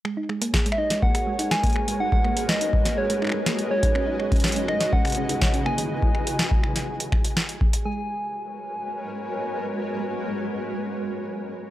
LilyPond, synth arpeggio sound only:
\new Staff \with { instrumentName = "Synth arpeggio sound" } { \time 4/4 \key gis \minor \tempo 4 = 123 gis16 dis'16 gis16 ais16 gis'16 gis16 dis'16 gis16 ais16 gis'16 gis16 dis'16 gis16 ais16 gis'16 gis16 | dis'16 gis16 ais16 gis'16 gis16 dis'16 gis16 ais16 gis'16 gis16 dis'16 gis16 ais16 gis'16 gis16 dis'16 | cis'16 dis'16 cis''16 cis'16 gis'16 cis'16 dis'16 cis''16 cis'16 gis'16 cis'16 dis'16 cis''16 cis'16 ais16 dis16 | r1 |
gis8 r2. r8 | r1 | }